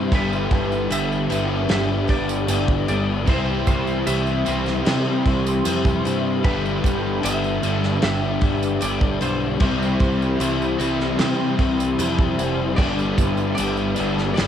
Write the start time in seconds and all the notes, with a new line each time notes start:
Already playing: C3 E3 G3 C4 E4 G4 E5 B5
0.12 G1 G2 D3 E3 G3 B3 D4 G4 B4 D6, kick, crash
0.33 tambourine
0.51 G1 B3, kick, crash
0.72 tambourine
0.90 G1 D3 E3 G3 B3 D4 E5, tambourine, crash
1.12 tambourine
1.30 G1 G2 D3 G3 B3 D4, tambourine, crash
1.68 G1 D3 G3 B3 D4 G4 E5, snare, crash
2.08 G1 B3 D5, kick, crash
2.29 tambourine
2.47 G1 D3 E3 G3 B3 D4, tambourine, crash
2.68 kick
2.88 G1 G3 B3 D4 D5, tambourine, crash
3.26 C2 C3 E3 G3 C4 E4 G4 C5 C6, kick, tambourine, crash
3.30 G4
3.67 C2 C5, kick, tambourine, crash
3.87 tambourine
4.07 C2 C3 E3 G3 C4 E4 E5, tambourine, crash
4.27 tambourine
4.46 C2 C3 G3 C4 E4, tambourine, crash
4.66 snare, tambourine
4.85 C3 G3 C4 E4 G4, snare, tambourine, crash
5.26 C2, kick, crash
5.47 tambourine
5.64 F2 C3 E3 G3 C4 E4, tambourine, crash
5.85 kick, tambourine
6.04 G2 G3 C4 E4, tambourine, crash
6.42 G1 G2 D3 E3 G3 B3 D4 B4 E5 D6, kick, crash
6.46 D3 G4
6.66 tambourine
6.84 G1 B3, kick, tambourine, crash
7.21 G1 D3 E3 G3 B3 D4 E5, crash
7.25 tambourine
7.44 tambourine
7.62 G1 G2 D3 G3 B3 D4, tambourine, crash
7.83 snare
8.02 G1 D3 G3 B3 D4 G4 E5, snare, crash
8.41 G1, kick, crash
8.63 tambourine
8.81 G1 D3 E3 G3 B3 D4 D5, tambourine, crash
9.01 kick
9.21 B1 G3 B3 D4 C5, tambourine, crash
9.60 C2 C3 E3 G3 C4 E4 G4 C6, kick, crash
9.82 tambourine
10.00 C2, kick, crash
10.22 tambourine
10.40 C2 C3 E3 G3 C4 E4, tambourine, crash
10.62 tambourine
10.80 C2 C3 G3 C4 E4, tambourine, crash
11.00 snare
11.19 C3 G3 C4 E4 G4, snare, crash
11.59 C2, kick, crash
11.80 tambourine
11.98 F2 C3 E3 G3 C4 E4, tambourine, crash
12.19 kick
12.38 F1 G3 C4 E4, tambourine, crash
12.76 G1 G2 D3 E3 G3 B3 D4 D5 B5 D6, kick, crash
12.82 G4
12.99 tambourine
13.18 G1 B3, kick, tambourine, crash
13.37 tambourine
13.55 D3 E3 G3 B3 D4 D5, tambourine, crash
13.59 G1
13.77 tambourine
13.95 G1 G2 D3 G3 B3 D4, tambourine, crash
14.18 snare
14.34 D3 G3 B3 D4 G4 D5, crash
14.38 G1, snare